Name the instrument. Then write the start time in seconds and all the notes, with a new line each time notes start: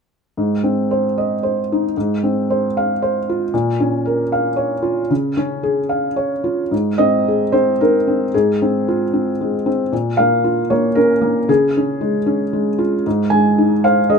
felt piano
0.37 G#2
0.64 C4
0.91 C5
1.18 D#5
1.43 C5
1.72 D#4
1.97 G#2
2.23 C4
2.50 C5
2.77 F5
3.02 C5
3.29 F4
3.54 A#2
3.80 C#4
4.05 A#4
4.32 F5
4.56 C#5
4.82 F4
5.10 C#3
5.37 C#4
5.63 G#4
5.89 F5
6.16 C#5
6.44 F4
6.71 G#2
6.98 C4 D#5
7.28 G#4
7.52 C4 C5
7.81 D#4 A#4
8.08 C4
8.34 G#2 G#4
8.62 C4
8.88 F4
9.13 C4
9.41 G#3
9.66 C4
9.92 A#2
10.17 A#3 F5
10.44 F4
10.70 A#3 C#5
10.95 C#4 A#4
11.21 A#3
11.48 C#3 G#4
11.77 C#4
12.01 G#3
12.26 C#4
12.53 G#3
12.78 F4
13.06 G#2
13.30 G#3 G#5
13.58 D#4
13.84 C5 F5
14.10 G#4 D#5